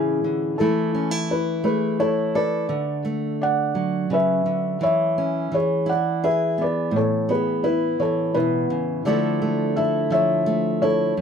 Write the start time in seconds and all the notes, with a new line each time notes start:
Already playing: A2 C#3 E3 C#4 E4 G#4
0.24 D3
0.58 E3 A3 E4 A4
0.94 C#4
1.11 E4
1.31 E4 B4
1.64 A3 G#4 B4
2.00 E4 A4 C#5
2.35 A4 B4 D5
2.69 D3
3.05 A3
3.41 D5 F#5
3.75 F#3
4.10 C#3 B4 E5
4.46 D3
4.81 E3 C#5 E5
5.18 C#4
5.52 E3 G#4 C#5
5.86 E4 D5 F#5
6.24 G#4 B4 E5
6.58 B3 D5
6.63 B4
6.91 A2
6.96 A4 C#5
7.29 B3 G#4 B4
7.64 E4 B4
8.00 E3 A4 C#5
8.34 B2 E4 B4
8.70 C#3
9.05 D3 F3 A3 E4 A4 D5
9.42 A3
9.76 E4 A4 E5
10.10 F3 C#5 E5
10.46 A3
10.82 E4 A4 C#5
11.17 F#2